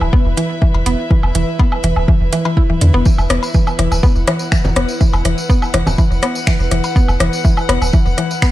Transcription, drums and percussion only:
0.01 low woodblock
0.13 kick
0.37 closed hi-hat
0.62 kick
0.74 cowbell
0.86 closed hi-hat
1.11 kick
1.23 low woodblock
1.35 closed hi-hat
1.59 kick, cowbell
1.72 low woodblock
1.84 closed hi-hat
1.96 low woodblock
2.08 kick
2.33 closed hi-hat
2.45 cowbell
2.57 kick
2.81 closed hi-hat
3.05 kick, tambourine
3.18 tambourine, low woodblock
3.30 cross-stick, closed hi-hat
3.43 tambourine, cowbell
3.54 kick, tambourine
3.67 tambourine, low woodblock
3.79 cross-stick, closed hi-hat
3.92 tambourine, low woodblock
4.03 kick, tambourine
4.16 tambourine
4.28 cross-stick, closed hi-hat, cowbell
4.39 tambourine
4.52 finger snap, kick, tambourine
4.65 tambourine, low conga
4.76 cross-stick, closed hi-hat
4.89 tambourine
5.01 kick, tambourine
5.13 tambourine, cowbell, low woodblock
5.25 cross-stick, closed hi-hat
5.38 tambourine
5.50 kick, tambourine
5.62 tambourine, low woodblock
5.74 cross-stick, closed hi-hat
5.87 tambourine, low conga, low woodblock
5.98 kick, tambourine, cowbell
6.12 tambourine
6.23 cross-stick, closed hi-hat
6.35 tambourine
6.47 finger snap, kick, tambourine
6.60 tambourine
6.71 cross-stick, closed hi-hat
6.84 tambourine, cowbell
6.96 kick, tambourine
7.08 tambourine, low woodblock
7.20 cross-stick, closed hi-hat
7.33 tambourine
7.45 kick, tambourine
7.57 tambourine, low woodblock
7.69 cross-stick, closed hi-hat, cowbell
7.82 tambourine, low woodblock
7.93 kick, tambourine
8.06 tambourine
8.18 cross-stick, closed hi-hat
8.31 tambourine
8.42 finger snap, kick, tambourine

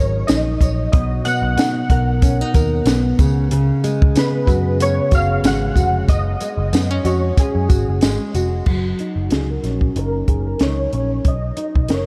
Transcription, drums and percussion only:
0.28 snare, closed hi-hat, tambourine
0.61 kick, closed hi-hat, tambourine
0.93 kick, closed hi-hat
1.25 closed hi-hat, tambourine
1.58 snare, closed hi-hat, tambourine
1.90 kick, closed hi-hat
2.22 kick, closed hi-hat, tambourine
2.54 kick, closed hi-hat, tambourine
2.86 snare, closed hi-hat, tambourine
3.19 kick, closed hi-hat, tambourine
3.51 closed hi-hat
3.84 closed hi-hat, tambourine
4.02 kick
4.16 snare, closed hi-hat, tambourine
4.47 kick, closed hi-hat, tambourine
4.80 closed hi-hat, tambourine
5.11 kick, closed hi-hat, tambourine
5.44 snare, closed hi-hat, tambourine
5.76 kick, closed hi-hat, tambourine
6.08 kick, closed hi-hat, tambourine
6.41 closed hi-hat, tambourine
6.73 snare, closed hi-hat, tambourine
7.05 closed hi-hat, tambourine
7.37 kick, closed hi-hat, tambourine
7.70 kick, closed hi-hat, tambourine
8.01 snare, closed hi-hat, tambourine
8.35 closed hi-hat, tambourine
8.66 kick, crash
8.99 closed hi-hat
9.30 snare, closed hi-hat
9.64 snare, closed hi-hat
9.81 kick
9.96 closed hi-hat
10.28 kick, closed hi-hat
10.59 snare, closed hi-hat
10.93 closed hi-hat
11.25 kick, closed hi-hat
11.57 closed hi-hat
11.75 kick
11.88 snare, closed hi-hat

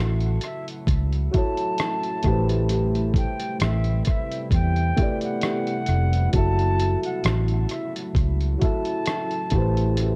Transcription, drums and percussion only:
0.20 closed hi-hat
0.41 closed hi-hat
0.68 closed hi-hat
0.87 kick, closed hi-hat
1.13 closed hi-hat
1.34 kick, closed hi-hat
1.57 closed hi-hat
1.78 cross-stick, closed hi-hat
2.03 closed hi-hat
2.23 kick, closed hi-hat
2.49 closed hi-hat
2.69 closed hi-hat
2.95 closed hi-hat
3.14 kick, closed hi-hat
3.40 closed hi-hat
3.60 cross-stick, closed hi-hat
3.84 closed hi-hat
4.05 kick, closed hi-hat
4.31 closed hi-hat
4.51 kick, closed hi-hat
4.76 closed hi-hat
4.97 kick, closed hi-hat
5.21 closed hi-hat
5.41 cross-stick, closed hi-hat
5.67 closed hi-hat
5.86 closed hi-hat
6.13 closed hi-hat
6.33 kick, closed hi-hat
6.59 closed hi-hat
6.80 closed hi-hat
7.03 closed hi-hat
7.24 cross-stick, closed hi-hat
7.48 closed hi-hat
7.69 closed hi-hat
7.96 closed hi-hat
8.15 kick, closed hi-hat
8.41 closed hi-hat
8.62 kick, closed hi-hat
8.85 closed hi-hat
9.06 cross-stick, closed hi-hat
9.31 closed hi-hat
9.50 kick, closed hi-hat
9.77 closed hi-hat
9.97 closed hi-hat

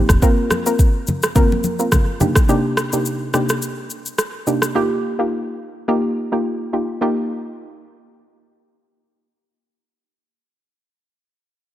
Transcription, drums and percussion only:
0.09 kick, cross-stick, shaker
0.22 kick, shaker
0.51 cross-stick, high conga, shaker
0.66 shaker
0.79 kick, shaker
1.07 high conga, low conga, shaker
1.23 cross-stick, shaker
1.36 kick, low conga, shaker
1.52 high conga
1.64 high conga, shaker
1.79 shaker
1.92 kick, cross-stick, high conga, low conga, shaker
2.20 high conga, low conga, shaker
2.35 kick, cross-stick, shaker
2.49 shaker
2.77 cross-stick, shaker
2.93 shaker
3.06 shaker
3.34 cross-stick, shaker
3.49 cross-stick, shaker
3.62 shaker
3.90 shaker
4.06 shaker
4.18 cross-stick, shaker
4.47 shaker
4.62 cross-stick, shaker

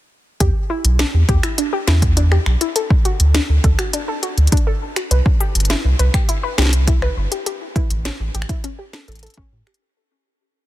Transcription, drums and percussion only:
0.40 kick, closed hi-hat
0.85 closed hi-hat
0.99 snare, closed hi-hat
1.29 kick, closed hi-hat
1.43 finger snap, closed hi-hat
1.58 closed hi-hat
1.88 snare, closed hi-hat
2.02 kick, closed hi-hat
2.17 closed hi-hat
2.32 finger snap
2.46 finger snap
2.61 closed hi-hat
2.76 closed hi-hat
2.90 kick
3.05 closed hi-hat
3.20 closed hi-hat
3.35 snare, closed hi-hat
3.64 kick, closed hi-hat
3.79 finger snap, closed hi-hat
3.93 closed hi-hat
4.23 closed hi-hat
4.38 closed hi-hat
4.47 closed hi-hat
4.52 kick, closed hi-hat
4.57 closed hi-hat
4.96 finger snap, closed hi-hat
5.11 closed hi-hat
5.26 kick
5.40 closed hi-hat
5.55 closed hi-hat
5.60 closed hi-hat
5.65 closed hi-hat
5.70 snare, closed hi-hat
5.99 closed hi-hat
6.14 finger snap, kick, closed hi-hat
6.29 closed hi-hat
6.58 snare, closed hi-hat
6.62 snare
6.65 snare
6.69 snare, closed hi-hat
6.88 kick, closed hi-hat
7.02 finger snap
7.32 closed hi-hat
7.46 closed hi-hat
7.76 kick, closed hi-hat
7.90 closed hi-hat
8.05 snare, closed hi-hat
8.35 closed hi-hat
8.42 finger snap
8.49 kick, closed hi-hat
8.64 closed hi-hat
8.93 snare, closed hi-hat
9.08 closed hi-hat
9.12 closed hi-hat
9.15 closed hi-hat
9.19 closed hi-hat
9.23 closed hi-hat
9.26 closed hi-hat
9.30 closed hi-hat
9.34 kick, closed hi-hat
9.67 finger snap
9.74 closed hi-hat

